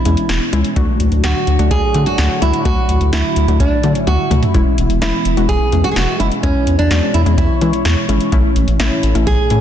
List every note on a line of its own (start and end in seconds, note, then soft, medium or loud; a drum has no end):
0.00 0.73 B2 medium
0.00 0.73 E3 medium
0.00 0.73 G#3 medium
0.00 0.73 B3 medium
0.00 0.49 E4 medium
0.00 0.73 E4 medium
0.05 0.16 E2 loud
0.05 0.40 G#3 medium
0.05 0.40 C#4 medium
0.05 0.40 E4 medium
0.05 closed hi-hat medium
0.17 closed hi-hat medium
0.29 0.40 E1 loud
0.29 snare loud
0.29 closed hi-hat medium
0.53 0.63 C#2 medium
0.53 0.70 G#3 medium
0.53 0.70 C#4 medium
0.53 0.70 E4 medium
0.53 closed hi-hat medium
0.64 closed hi-hat medium
0.76 0.87 D2 loud
0.76 4.51 A2 medium
0.76 4.51 D3 medium
0.76 4.51 F#3 medium
0.76 1.11 A3 medium
0.76 2.63 D4 medium
0.76 1.11 D4 medium
0.76 4.51 F#4 medium
0.76 1.11 F#4 loud
0.76 kick loud
0.76 closed hi-hat medium
1.00 1.10 D2 loud
1.00 closed hi-hat medium
1.12 1.22 D2 loud
1.12 closed hi-hat soft
1.24 1.34 D2 loud
1.24 1.49 A3 medium
1.24 1.49 D4 medium
1.24 1.49 F#4 medium
1.24 1.71 F#4 loud
1.24 snare loud
1.24 closed hi-hat medium
1.47 1.58 D2 loud
1.47 closed hi-hat medium
1.59 1.70 D2 medium
1.59 1.85 A3 medium
1.59 1.85 D4 medium
1.59 1.85 F#4 medium
1.59 closed hi-hat medium
1.71 1.81 D2 loud
1.71 2.04 G#4 loud
1.71 kick medium
1.71 closed hi-hat medium
1.94 2.05 D3 loud
1.94 2.29 A3 medium
1.94 2.29 D4 medium
1.94 2.29 F#4 medium
1.94 closed hi-hat medium
2.06 2.39 F#4 loud
2.06 closed hi-hat medium
2.18 2.29 D2 loud
2.18 snare loud
2.18 closed hi-hat medium
2.42 2.52 C#2 medium
2.42 2.59 A3 medium
2.42 2.59 D4 medium
2.42 2.65 E4 medium
2.42 2.59 F#4 medium
2.42 closed hi-hat medium
2.54 closed hi-hat medium
2.65 2.76 D2 loud
2.65 3.00 A3 medium
2.65 3.00 D4 medium
2.65 9.61 E4 medium
2.65 3.00 F#4 medium
2.65 3.12 F#4 loud
2.65 kick loud
2.65 closed hi-hat medium
2.89 2.99 D2 medium
2.89 closed hi-hat medium
3.01 3.11 D2 medium
3.01 closed hi-hat soft
3.13 3.23 D2 loud
3.13 3.38 A3 medium
3.13 3.38 D4 medium
3.13 3.57 E4 medium
3.13 3.38 F#4 medium
3.13 snare loud
3.13 closed hi-hat medium
3.36 3.47 D2 medium
3.36 closed hi-hat medium
3.48 3.59 D2 medium
3.48 3.74 A3 medium
3.48 3.74 D4 medium
3.48 3.74 F#4 medium
3.48 closed hi-hat medium
3.60 3.70 D2 loud
3.60 4.04 D4 medium
3.60 kick medium
3.60 closed hi-hat medium
3.83 3.94 D3 loud
3.83 4.18 A3 medium
3.83 4.18 D4 medium
3.83 4.18 F#4 medium
3.83 closed hi-hat medium
3.95 closed hi-hat medium
4.07 4.18 D2 loud
4.07 4.40 F#4 medium
4.07 closed hi-hat medium
4.07 high tom medium
4.31 4.41 D2 medium
4.31 4.48 A3 medium
4.31 4.48 D4 medium
4.31 4.48 F#4 medium
4.31 closed hi-hat medium
4.31 mid tom medium
4.43 closed hi-hat medium
4.43 floor tom medium
4.54 4.65 E1 loud
4.54 9.61 B2 medium
4.54 9.61 E3 medium
4.54 4.89 G#3 medium
4.54 8.29 G#3 medium
4.54 6.41 B3 medium
4.54 4.89 C#4 medium
4.54 4.89 E4 loud
4.54 kick loud
4.54 closed hi-hat medium
4.78 4.88 E1 medium
4.78 closed hi-hat medium
4.90 5.00 E1 loud
4.90 closed hi-hat soft
5.02 5.12 E1 loud
5.02 5.27 G#3 medium
5.02 5.27 C#4 medium
5.02 5.27 E4 medium
5.02 5.46 E4 medium
5.02 snare loud
5.02 closed hi-hat medium
5.25 5.36 E1 loud
5.25 closed hi-hat medium
5.37 5.48 E1 loud
5.37 5.63 G#3 medium
5.37 5.63 C#4 medium
5.37 5.63 F#4 medium
5.37 closed hi-hat medium
5.49 5.59 E1 loud
5.49 5.84 G#4 loud
5.49 kick medium
5.49 closed hi-hat medium
5.72 5.83 E2 loud
5.72 6.07 G#3 medium
5.72 6.07 C#4 medium
5.72 6.07 E4 medium
5.72 closed hi-hat medium
5.84 5.91 F#4 loud
5.84 closed hi-hat medium
5.91 5.98 G#4 medium
5.96 6.07 E1 loud
5.96 6.19 F#4 loud
5.96 snare loud
5.96 closed hi-hat medium
6.20 6.30 F#1 medium
6.20 6.37 G#3 medium
6.20 6.37 C#4 medium
6.20 6.26 E4 medium
6.20 6.37 E4 medium
6.20 closed hi-hat medium
6.32 closed hi-hat medium
6.43 6.54 E2 loud
6.43 6.78 G#3 medium
6.43 6.76 C#4 medium
6.43 6.78 C#4 medium
6.43 6.78 E4 medium
6.43 8.30 C#5 medium
6.43 kick loud
6.43 closed hi-hat medium
6.67 6.77 E2 loud
6.67 closed hi-hat medium
6.79 6.89 E2 loud
6.79 7.15 D4 medium
6.79 closed hi-hat soft
6.91 7.01 E2 loud
6.91 7.16 G#3 medium
6.91 7.16 C#4 medium
6.91 7.16 F#4 medium
6.91 snare loud
6.91 closed hi-hat medium
7.14 7.25 E2 loud
7.14 7.21 E4 medium
7.14 closed hi-hat medium
7.26 7.37 E2 medium
7.26 7.52 G#3 medium
7.26 7.52 C#4 medium
7.26 7.52 E4 medium
7.26 closed hi-hat medium
7.38 7.48 E2 loud
7.38 8.05 E4 medium
7.38 kick medium
7.38 closed hi-hat medium
7.61 7.72 E3 loud
7.61 7.96 G#3 medium
7.61 7.96 C#4 medium
7.61 7.96 E4 medium
7.61 closed hi-hat medium
7.73 closed hi-hat medium
7.85 7.96 E2 loud
7.85 snare loud
7.85 closed hi-hat medium
8.09 8.19 G#1 loud
8.09 8.26 G#3 medium
8.09 8.26 C#4 medium
8.09 8.26 E4 loud
8.09 closed hi-hat medium
8.21 closed hi-hat medium
8.32 8.43 A1 loud
8.32 9.61 A2 medium
8.32 8.67 A3 medium
8.32 8.67 C#4 medium
8.32 9.61 C#4 medium
8.32 8.67 E4 loud
8.32 kick loud
8.32 closed hi-hat medium
8.56 8.66 A1 loud
8.56 closed hi-hat medium
8.68 8.78 A1 medium
8.68 closed hi-hat soft
8.80 8.90 A1 loud
8.80 9.05 A3 medium
8.80 9.05 C#4 medium
8.80 9.05 E4 medium
8.80 9.28 E4 medium
8.80 snare loud
8.80 closed hi-hat medium
9.03 9.14 A1 loud
9.03 closed hi-hat medium
9.15 9.25 A1 medium
9.15 9.41 A3 medium
9.15 9.41 C#4 medium
9.15 9.41 E4 medium
9.15 closed hi-hat medium
9.27 9.37 A1 loud
9.27 9.61 G#4 loud
9.27 kick medium
9.27 closed hi-hat medium
9.50 9.61 A2 medium
9.50 9.61 A3 medium
9.50 9.61 C#4 medium
9.50 9.61 E4 medium
9.50 closed hi-hat medium